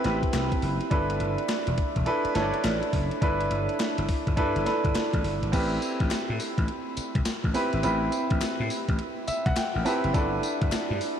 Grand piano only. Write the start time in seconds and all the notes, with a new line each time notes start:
Already playing: C4 E4 G4 A4 B4
0.04 C4 E4 G4 B4
0.90 D4 E4 A4 B4
2.06 D4 E4 A4 B4
2.35 D4 E4 A4 C#5
2.42 D5
3.21 D4 E4 A4 B4
4.37 D4 E4 A4 B4
4.65 D4 E4 A4 B4
5.52 C4 E4 G4 B4
7.54 C4 E4 G4 B4
7.83 C4 E4 G4 B4
9.28 E5
9.46 F#5
9.57 G5
9.85 C4 E4 G4 B4 A5
10.14 D4 E4 A4 B4